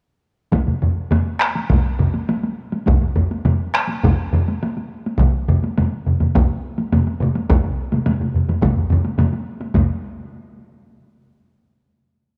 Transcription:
0.52 taiko medium
0.52 taiko low-mid medium
0.52 taiko mid medium
0.52 taiko high medium
0.67 taiko low-mid medium
0.67 taiko mid medium
0.82 taiko low-mid medium
0.82 taiko mid medium
1.11 taiko low-mid medium
1.11 taiko mid medium
1.11 taiko high medium
1.40 taiko rim medium
1.55 taiko high soft
1.70 taiko medium
1.70 taiko low-mid medium
1.70 taiko mid medium
1.70 taiko high medium
1.99 taiko low-mid medium
1.99 taiko mid medium
2.14 taiko high soft
2.29 taiko high medium
2.43 taiko high soft
2.72 taiko high soft
2.87 taiko medium
2.87 taiko low-mid medium
2.87 taiko mid medium
2.87 taiko high medium
3.02 taiko low-mid medium
3.02 taiko mid medium
3.16 taiko low-mid medium
3.16 taiko mid medium
3.31 taiko high soft
3.45 taiko low-mid medium
3.45 taiko mid medium
3.45 taiko high medium
3.74 taiko rim medium
3.89 taiko high soft
4.03 taiko medium
4.03 taiko low-mid medium
4.03 taiko mid medium
4.03 taiko high medium
4.33 taiko low-mid medium
4.33 taiko mid medium
4.48 taiko high soft
4.63 taiko high medium
4.77 taiko high soft
5.06 taiko high soft
5.19 taiko medium
5.19 taiko low-mid medium
5.19 taiko mid medium
5.19 taiko high medium
5.48 taiko low-mid medium
5.48 taiko mid medium
5.64 taiko high soft
5.78 taiko low-mid medium
5.78 taiko mid medium
5.78 taiko high medium
6.07 taiko low-mid medium
6.07 taiko mid medium
6.20 taiko low-mid medium
6.20 taiko mid medium
6.20 taiko high soft
6.35 taiko medium
6.35 taiko low-mid medium
6.35 taiko mid medium
6.35 taiko high medium
6.78 taiko high soft
6.92 taiko low-mid medium
6.92 taiko mid medium
6.92 taiko high medium
7.07 taiko high soft
7.20 taiko low-mid medium
7.20 taiko mid medium
7.35 taiko high medium
7.49 taiko medium
7.49 taiko low-mid medium
7.49 taiko mid medium
7.49 taiko high medium
7.64 taiko low-mid medium
7.64 taiko mid medium
7.92 taiko low-mid medium
7.92 taiko mid medium
7.92 taiko high medium
8.06 taiko low-mid medium
8.06 taiko mid medium
8.06 taiko high medium
8.20 taiko low-mid medium
8.20 taiko mid medium
8.34 taiko low-mid medium
8.34 taiko mid medium
8.48 taiko low-mid medium
8.48 taiko mid medium
8.48 taiko high medium
8.62 taiko medium
8.62 taiko low-mid medium
8.62 taiko mid medium
8.62 taiko high medium
8.76 taiko low-mid medium
8.76 taiko mid medium
8.90 taiko low-mid medium
8.90 taiko mid medium
9.05 taiko high soft
9.18 taiko low-mid medium
9.18 taiko mid medium
9.18 taiko high medium
9.33 taiko high soft
9.61 taiko high soft
9.74 taiko medium
9.74 taiko low-mid medium
9.74 taiko mid medium
9.74 taiko high medium

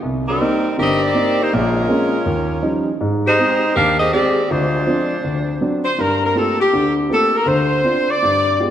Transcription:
0.03 0.35 C2 medium
0.28 0.75 G3 medium
0.28 0.75 C4 medium
0.28 0.75 D#4 medium
0.28 0.75 A#4 medium
0.40 0.65 A#3 soft
0.40 0.66 C4 soft
0.40 0.66 D#4 soft
0.78 1.10 G1 medium
0.78 1.10 G2 medium
0.78 1.01 C4 medium
0.78 1.01 G4 medium
0.78 1.01 A#4 medium
0.78 1.03 D#5 loud
1.01 1.39 C4 medium
1.01 1.39 G4 medium
1.01 1.39 A#4 medium
1.01 1.39 D5 medium
1.14 1.40 A#3 medium
1.14 1.40 C4 soft
1.14 1.40 D#4 medium
1.41 1.54 A#3 medium
1.41 1.53 D#4 medium
1.41 1.54 G4 medium
1.41 1.53 C5 medium
1.53 1.85 A#1 medium
1.53 1.85 A#2 medium
1.53 2.27 G#3 medium
1.53 2.88 C#4 medium
1.53 2.88 F4 medium
1.53 2.88 A#4 medium
1.89 2.14 G#3 medium
1.89 2.14 A#3 soft
1.89 2.14 C4 soft
1.89 2.15 C#4 medium
2.26 2.58 D#2 medium
2.62 2.88 F3 soft
2.62 2.88 G3 soft
2.62 2.88 C#4 soft
2.62 2.88 D#4 medium
3.01 3.33 G#2 medium
3.26 3.73 G#3 medium
3.26 3.72 D#4 medium
3.26 3.73 G4 medium
3.26 3.72 C5 medium
3.38 3.63 G#3 soft
3.38 3.64 C4 soft
3.38 3.64 G4 medium
3.75 4.08 D#2 medium
3.75 3.98 D4 medium
3.75 3.98 G4 medium
3.75 3.98 A#4 medium
3.75 3.97 F5 loud
3.99 4.11 C4 medium
3.99 4.12 G4 medium
3.99 4.11 G#4 medium
3.99 4.12 D#5 medium
4.13 4.38 G#3 soft
4.13 4.38 C4 soft
4.13 4.48 C4 medium
4.13 4.47 G4 medium
4.13 4.38 G4 medium
4.13 4.48 G#4 medium
4.13 4.47 D5 medium
4.50 4.82 D2 medium
4.50 5.24 G#3 medium
4.50 5.62 D4 medium
4.50 5.24 F4 medium
4.50 5.62 C5 medium
4.87 5.12 F3 soft
4.87 5.12 C4 soft
4.87 5.12 D4 soft
5.24 5.56 D2 medium
5.61 5.86 F#3 soft
5.61 5.86 C4 soft
5.61 5.87 D4 medium
5.85 5.97 C5 medium
5.98 6.30 G2 medium
5.98 6.23 A#4 medium
6.25 6.36 A#4 medium
6.35 6.61 A3 soft
6.35 6.61 A#3 soft
6.35 6.61 C4 soft
6.35 6.61 F4 soft
6.35 6.61 G4 soft
6.35 6.60 A4 medium
6.60 6.95 G4 medium
6.73 7.05 D2 medium
6.73 7.05 D3 medium
7.09 7.35 A3 soft
7.09 7.35 A#3 soft
7.09 7.35 C4 soft
7.09 7.35 F4 soft
7.09 7.35 G4 medium
7.09 7.34 A4 medium
7.36 7.48 A#4 medium
7.46 7.79 D2 medium
7.46 7.79 D3 medium
7.46 8.08 C5 medium
7.84 8.10 C4 soft
7.84 8.10 D4 soft
7.84 8.10 F4 medium
8.11 8.60 D5 loud
8.22 8.54 G2 medium
8.60 8.71 G#3 soft
8.60 8.71 B3 soft
8.60 8.71 F4 soft
8.60 8.71 G4 soft

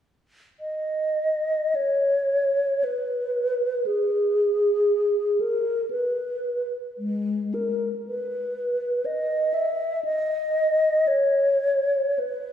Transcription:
0.60 1.77 D#5 soft
1.75 2.85 C#5 soft
2.84 3.88 B4 soft
3.86 5.42 G#4 soft
5.40 5.90 A#4 soft
5.90 6.73 B4 soft
6.98 7.55 G#3 soft
7.54 7.89 A#4 soft
8.07 9.07 B4 soft
9.05 9.55 D#5 medium
9.54 10.04 E5 medium
10.04 11.09 D#5 medium
11.07 12.21 C#5 medium
12.19 12.53 B4 soft

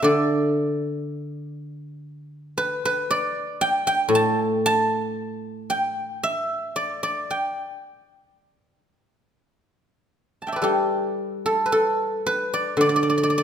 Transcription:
0.00 3.08 D3 medium
0.00 1.07 E3 medium
0.00 0.30 B3 soft
0.00 0.56 E4 soft
0.00 0.82 G4 soft
0.00 1.08 B4 soft
0.00 1.69 E5 medium
0.04 1.89 D5 medium
2.58 2.85 B4 medium
2.85 4.90 B4 medium
3.11 4.95 D5 medium
3.61 3.87 G5 loud
3.87 4.45 G5 medium
4.09 7.27 A2 medium
4.15 4.45 A5 medium
4.45 4.65 G5 medium
4.66 6.10 A5 loud
5.70 7.25 G5 medium
6.23 7.95 E5 medium
6.76 7.03 D5 medium
7.03 8.88 D5 medium
7.31 10.05 G5 medium
10.42 11.87 A5 soft
10.47 12.20 E5 soft
10.47 12.02 G5 soft
10.52 11.65 B4 soft
10.52 12.37 D5 soft
10.62 13.43 G3 soft
10.62 12.99 G4 medium
10.62 11.45 A4 soft
11.46 11.72 A4 medium
11.66 12.26 B4 soft
11.72 13.43 A4 medium
12.26 13.43 B4 medium
12.54 12.80 D5 medium
12.77 13.43 D3 soft
12.77 12.89 D5 medium
12.89 12.96 D5 soft
12.96 13.02 D5 medium
13.03 13.09 D5 soft
13.10 13.17 D5 medium
13.18 13.23 D5 soft
13.23 13.30 D5 medium
13.30 13.37 D5 soft
13.38 13.43 D5 medium

